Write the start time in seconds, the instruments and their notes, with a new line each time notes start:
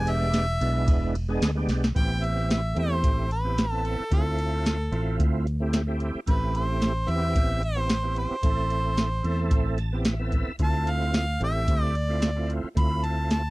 Already playing: fingered electric bass E1, tonewheel organ G#3 B3 D4 G4, harmonica G#5
0.07 harmonica E5, ride
0.22 snare
0.34 snare, ride
0.61 fingered electric bass B1, tonewheel organ G#3 B3 D4 E4, ride
0.88 fingered electric bass E1, kick, ride
1.15 ride
1.28 tonewheel organ G#3 B3 D4 G#4
1.42 fingered electric bass D2, snare, ride
1.55 tonewheel organ G#3 B3 D4 G4
1.68 fingered electric bass B1, snare, ride
1.84 snare
1.95 fingered electric bass A1, tonewheel organ B3 C4 E4 G4, harmonica G5, kick, closed hi-hat
2.24 harmonica E5, closed hi-hat
2.39 snare
2.50 harmonica E5, snare, closed hi-hat
2.75 fingered electric bass E2, tonewheel organ A3 C4 E4 G4, closed hi-hat
2.79 harmonica C5
3.04 fingered electric bass A1, kick, closed hi-hat
3.31 harmonica B4, closed hi-hat
3.44 tonewheel organ B3 C4 E4 G4
3.58 snare, closed hi-hat
3.71 tonewheel organ B3 C4 E4 A4, harmonica A4
3.85 harmonica A4, closed hi-hat
4.00 muted fingered electric bass stroke
4.10 fingered electric bass D2, tonewheel organ A3 C4 E4 F4, harmonica A4, kick, closed hi-hat
4.39 closed hi-hat
4.66 snare, closed hi-hat
4.92 fingered electric bass A1, tonewheel organ A3 C4 E4 F4, closed hi-hat
5.20 fingered electric bass D2, kick, closed hi-hat
5.47 closed hi-hat
5.60 tonewheel organ A3 C4 E4 G4
5.73 snare, closed hi-hat
5.87 tonewheel organ A3 C4 E4 G4
6.00 closed hi-hat
6.15 muted fingered electric bass stroke
6.26 fingered electric bass A1, tonewheel organ A3 C4 E4 G4, harmonica B4, kick, closed hi-hat
6.55 harmonica C5, closed hi-hat
6.82 snare, closed hi-hat
7.07 fingered electric bass E2, tonewheel organ B3 C4 E4 G4, harmonica E5, closed hi-hat
7.36 fingered electric bass A1, kick, closed hi-hat
7.63 harmonica C5, closed hi-hat
7.76 tonewheel organ B3 C4 E4 G4
7.89 snare, closed hi-hat
8.03 tonewheel organ B3 C4 E4 G4
8.16 harmonica C5, closed hi-hat
8.43 fingered electric bass A1, tonewheel organ A3 C4 E4 A4, kick, closed hi-hat
8.58 snare
8.70 closed hi-hat
8.97 snare, closed hi-hat
9.23 fingered electric bass E2, tonewheel organ A3 C4 E4 A4, closed hi-hat
9.51 fingered electric bass A1, kick, closed hi-hat
9.78 tonewheel organ A5, snare, closed hi-hat
9.93 tonewheel organ B3 C4 E4 G4
10.05 tonewheel organ E5, snare, closed hi-hat
10.19 tonewheel organ B3 C4 E4 A4
10.32 kick, closed hi-hat
10.48 muted fingered electric bass stroke
10.59 fingered electric bass D2, tonewheel organ A3 C4 E4 F4, kick, closed hi-hat
10.63 harmonica A5
10.74 snare
10.87 harmonica F5, closed hi-hat
11.02 snare
11.14 harmonica F5, snare, closed hi-hat
11.40 fingered electric bass A1, tonewheel organ A3 C4 E4 G4, harmonica E5, closed hi-hat
11.68 fingered electric bass D2, kick, closed hi-hat
11.83 harmonica D5
11.95 harmonica D5, closed hi-hat
12.08 tonewheel organ A3 C4 E4 F4
12.22 snare, closed hi-hat
12.35 tonewheel organ A3 C4 E4 F4
12.50 closed hi-hat
12.64 muted fingered electric bass stroke
12.75 fingered electric bass D2, tonewheel organ A3 C4 E4 F4, harmonica B5, kick, closed hi-hat
13.04 harmonica A5, closed hi-hat
13.31 harmonica A5, snare, closed hi-hat